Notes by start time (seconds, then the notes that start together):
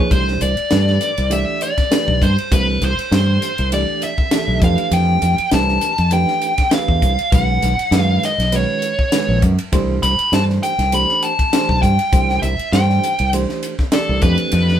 Already playing: F3 A#3 D#4 G#4 C#5
0.10 C2 E3 D4 G4 C5, kick, hi-hat pedal, ride
0.28 snare
0.41 C2 D5, hi-hat pedal, ride
0.57 muted fingered electric bass stroke, ride
0.71 G2 E3 A3 D4 G4 B4, snare, hi-hat pedal, ride
0.87 snare
1.01 snare, hi-hat pedal, ride
1.18 C2, ride
1.30 E3 A3 D4 G4 D5 E5, hi-hat pedal, ride
1.61 D5, hi-hat pedal, ride
1.78 kick, snare, ride
1.91 E3 A3 D4 G4 B4, snare, hi-hat pedal, ride
2.08 B1, kick
2.22 G2 C5, kick, hi-hat pedal, ride
2.38 ride
2.51 C2 E3 A3 C4 D4 G4 B4, kick, hi-hat pedal, ride
2.82 C2 C5, snare, hi-hat pedal, ride
2.99 muted fingered electric bass stroke, ride
3.11 G2 E3 A3 D4 G4 C5, snare, hi-hat pedal, ride
3.42 hi-hat pedal, ride
3.58 C2, ride
3.72 E3 A3 D4 G4 D5, hi-hat pedal, ride
4.02 E5, hi-hat pedal, ride
4.18 kick
4.31 E3 A3 D4 G4 A4, snare, hi-hat pedal, ride
4.48 B1
4.61 F2 E3 A3 D4 G4 B4 F5, kick, hi-hat pedal, ride
4.78 ride
4.91 F2 G5, hi-hat pedal, ride
5.22 F2, hi-hat pedal, ride
5.38 muted fingered electric bass stroke, ride
5.51 C2 E3 A3 D4 G4 B4 A5, snare, hi-hat pedal, ride
5.68 snare
5.81 hi-hat pedal, ride
5.98 F2, ride
6.11 E3 A3 D4 G4 B4 G5, hi-hat pedal, ride
6.28 snare
6.42 hi-hat pedal, ride
6.58 kick, snare, ride
6.71 E3 A3 D4 G4 B4 F5, snare, hi-hat pedal, ride
6.88 E2, kick
7.02 C2, kick, hi-hat pedal, ride
7.19 ride
7.32 B1 D#3 G#3 C#4 F#4 B4 F#5, kick, hi-hat pedal, ride
7.62 B1, snare, hi-hat pedal, ride
7.79 ride
7.91 F#2 D#3 G#3 C#4 F#4 B4, snare, hi-hat pedal, ride
7.96 F5
8.23 D#5, snare, hi-hat pedal, ride
8.38 B1, snare, ride
8.52 D#3 G#3 C#4 F#4 B4 C#5, hi-hat pedal, ride
8.82 hi-hat pedal, ride
8.99 kick
9.12 D#3 G#3 C#4 F#4 B4, snare, hi-hat pedal, ride
9.29 A#1
9.42 F#2, kick, hi-hat pedal, ride
9.59 ride
9.72 C2 E3 A3 D4 G4 C5, kick, hi-hat pedal, ride
10.03 C2 B5, snare, hi-hat pedal, ride
10.19 ride
10.32 G2 E3 A3 D4 G4 C5 A5, snare, hi-hat pedal, ride
10.50 snare
10.63 G5, hi-hat pedal, ride
10.78 C2, snare, ride
10.92 E3 A3 D4 G4 C5 B5, hi-hat pedal, ride
11.09 snare
11.22 A5, hi-hat pedal, ride
11.39 kick, ride
11.53 E3 A3 D4 G4 C5, snare, hi-hat pedal, ride
11.69 B1, kick
11.82 G2 G5, kick, hi-hat pedal, ride
11.99 ride
12.12 C2 E3 A3 D4 G4 C5, kick, hi-hat pedal, ride
12.29 snare
12.42 C2 E5, hi-hat pedal, ride
12.59 muted fingered electric bass stroke, ride
12.72 G2 E3 A3 D4 G4 C5 G5, snare, hi-hat pedal, ride
12.90 snare
13.03 hi-hat pedal, ride
13.19 C2, ride
13.33 E3 A3 D4 G4 C5, hi-hat pedal, ride
13.49 snare
13.63 hi-hat pedal, ride
13.79 kick, snare
13.92 E3 A3 D4 G4 A4 D5, snare, hi-hat pedal, ride
14.09 C2
14.22 F2 E3 A3 C4 D4 G4 B4, kick, hi-hat pedal, ride
14.38 ride
14.52 F2, hi-hat pedal, ride
14.69 snare